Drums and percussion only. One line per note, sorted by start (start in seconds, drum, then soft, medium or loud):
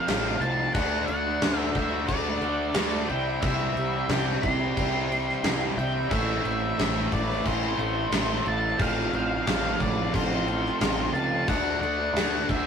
0.08 snare loud
0.08 crash medium
0.42 crash medium
0.75 kick loud
0.75 crash medium
1.08 crash medium
1.42 snare loud
1.42 crash medium
1.75 kick medium
1.75 crash medium
2.08 kick medium
2.08 crash medium
2.42 crash medium
2.74 snare loud
2.74 crash medium
3.09 crash medium
3.42 kick loud
3.42 crash medium
3.77 crash medium
4.09 snare loud
4.09 crash medium
4.43 kick medium
4.43 crash medium
4.77 kick medium
4.77 crash medium
5.12 crash medium
5.29 snare soft
5.44 snare loud
5.44 crash medium
5.79 crash medium
6.11 kick loud
6.11 crash medium
6.45 crash medium
6.79 snare loud
6.79 crash medium
7.12 kick medium
7.12 crash medium
7.30 snare soft
7.46 kick medium
7.46 crash medium
7.79 crash medium
8.12 snare loud
8.12 crash medium
8.46 crash medium
8.79 kick loud
8.79 crash medium
9.13 crash medium
9.47 snare loud
9.47 crash medium
9.80 kick medium
9.80 crash medium
10.14 kick medium
10.14 crash medium
10.48 crash medium
10.65 snare soft
10.81 snare loud
10.81 crash medium
11.15 crash medium
11.48 kick loud
11.48 crash medium
11.83 crash medium
12.16 snare loud
12.16 crash medium
12.49 kick medium
12.49 crash medium